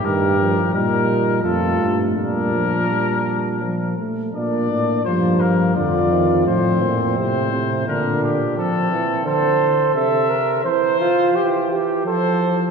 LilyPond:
<<
  \new Staff \with { instrumentName = "Trumpet" } { \time 3/4 \key bes \major \tempo 4 = 85 bes'4 bes'4 a'4 | bes'2~ bes'8 r8 | d''4 c''8 bes'8 d''4 | c''4 c''4 bes'8 g'8 |
a'4 a'4 e''4 | c''4. r8 c''4 | }
  \new Staff \with { instrumentName = "Flugelhorn" } { \time 3/4 \key bes \major g'4 ees'4 f'4 | d'2~ d'8 r8 | d'4 bes4 f'4 | c'2 d'4 |
c'4 c''4 a'8 bes'8 | c''8 f'8 g'8 g'8 a'4 | }
  \new Staff \with { instrumentName = "Euphonium" } { \clef bass \time 3/4 \key bes \major ees8 f8 g4 a4 | g8 f8 g4 f8 a8 | bes4 f4 d8 ees8 | f8 bes,8 c8 c8 d4 |
f8 e8 d4 c4 | e8 r8 e4 f4 | }
  \new Staff \with { instrumentName = "Bass trombone" } { \clef bass \time 3/4 \key bes \major g,4 bes,4 f,8 g,8 | bes,2~ bes,8 r8 | bes,8 a,8 g,4 f,4 | a,4 a,4 bes,4 |
r2. | r2. | }
>>